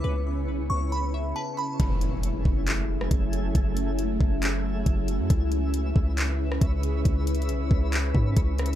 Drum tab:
HH |------------------------------------------------|x-----x-----x-----------x-----------x-----x-----|x-----x-----x-----------x-----------x-----x-----|x-----x-----x-----------x-----------x-----x-----|
CP |------------------------------------------------|------------------------x-----------------------|------------------------x-----------------------|------------------------x-----------------------|
SD |------------------------------------------------|---------------------------------r--------------|------------------------------------------------|---------------------------------r--------------|
BD |------------------------------------------------|o-----------------o-----------------o-----------|o-----------------o-----------------o-----------|o-----------------o-----------------o-----------|

HH |x-----x-x-x-x-----------x-----------x-----x-x---|
CP |------------------------x-----------------------|
SD |------------------------------------------r-----|
BD |o-----------------o-----------o-----o-----------|